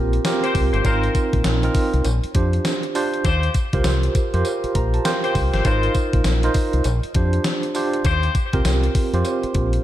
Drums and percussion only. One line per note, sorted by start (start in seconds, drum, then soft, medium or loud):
0.13 closed hi-hat soft
0.25 snare loud
0.25 closed hi-hat medium
0.25 tambourine medium
0.25 cowbell medium
0.44 closed hi-hat medium
0.55 kick loud
0.55 open hi-hat medium
0.55 tambourine medium
0.74 closed hi-hat medium
0.85 kick loud
0.85 closed hi-hat medium
0.85 tambourine medium
0.85 cowbell medium
1.03 closed hi-hat medium
1.15 kick loud
1.15 closed hi-hat medium
1.15 tambourine medium
1.33 kick loud
1.33 closed hi-hat medium
1.44 snare loud
1.44 closed hi-hat medium
1.44 tambourine loud
1.44 cowbell medium
1.63 closed hi-hat medium
1.75 kick loud
1.75 open hi-hat medium
1.75 tambourine medium
1.94 closed hi-hat medium
2.05 closed hi-hat medium
2.05 tambourine medium
2.05 cowbell medium
2.24 closed hi-hat medium
2.35 kick loud
2.35 closed hi-hat loud
2.53 closed hi-hat soft
2.65 snare loud
2.65 closed hi-hat medium
2.65 tambourine medium
2.65 cowbell medium
2.83 closed hi-hat medium
2.95 open hi-hat medium
2.95 tambourine medium
3.14 closed hi-hat soft
3.24 kick loud
3.24 closed hi-hat medium
3.24 tambourine medium
3.24 cowbell medium
3.43 closed hi-hat medium
3.54 kick loud
3.54 closed hi-hat medium
3.54 tambourine medium
3.73 kick medium
3.73 closed hi-hat medium
3.84 snare loud
3.84 closed hi-hat medium
3.84 tambourine medium
3.84 cowbell medium
4.03 closed hi-hat medium
4.15 kick loud
4.15 closed hi-hat medium
4.15 tambourine medium
4.34 closed hi-hat medium
4.45 closed hi-hat medium
4.45 tambourine medium
4.45 cowbell medium
4.64 closed hi-hat medium
4.75 kick loud
4.75 closed hi-hat medium
4.94 closed hi-hat soft
5.05 snare loud
5.05 closed hi-hat medium
5.05 tambourine loud
5.05 cowbell medium
5.24 closed hi-hat medium
5.35 kick loud
5.35 open hi-hat medium
5.35 tambourine medium
5.54 snare medium
5.54 closed hi-hat medium
5.65 kick loud
5.65 closed hi-hat medium
5.65 tambourine medium
5.65 cowbell medium
5.83 closed hi-hat medium
5.95 kick loud
5.95 closed hi-hat medium
5.95 tambourine medium
6.13 kick medium
6.13 closed hi-hat medium
6.24 snare loud
6.24 closed hi-hat medium
6.24 tambourine medium
6.24 cowbell medium
6.43 closed hi-hat medium
6.54 kick loud
6.54 open hi-hat medium
6.54 tambourine medium
6.73 closed hi-hat medium
6.84 closed hi-hat medium
6.84 tambourine medium
6.84 cowbell medium
7.03 closed hi-hat medium
7.14 kick loud
7.14 closed hi-hat medium
7.33 closed hi-hat medium
7.44 snare loud
7.44 closed hi-hat medium
7.44 tambourine medium
7.44 cowbell medium
7.63 closed hi-hat medium
7.75 open hi-hat medium
7.75 tambourine medium
7.93 closed hi-hat medium
8.04 kick loud
8.04 closed hi-hat medium
8.04 tambourine medium
8.04 cowbell medium
8.23 closed hi-hat medium
8.35 kick loud
8.35 closed hi-hat medium
8.35 tambourine medium
8.53 kick loud
8.53 closed hi-hat medium
8.65 snare loud
8.65 closed hi-hat medium
8.65 tambourine loud
8.65 cowbell medium
8.83 closed hi-hat medium
8.95 kick loud
8.95 open hi-hat medium
8.95 tambourine medium
9.14 closed hi-hat medium
9.25 closed hi-hat medium
9.25 tambourine medium
9.25 cowbell medium
9.43 closed hi-hat medium
9.54 kick loud
9.54 closed hi-hat medium
9.73 closed hi-hat medium